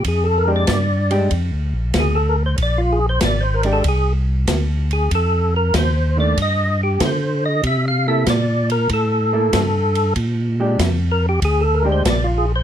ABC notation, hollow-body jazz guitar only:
X:1
M:4/4
L:1/8
Q:"Swing" 1/4=95
K:Bb
V:1 name="Hollow-body jazz guitar"
z [_A,DG] z [A,DG] z4 | z3 [_A,DG] z4 | z3 [E,A,D] z4 | z [B,=EA] z3 [B,EA] z2 |
z [_A,DG] z3 [A,DG] z2 |]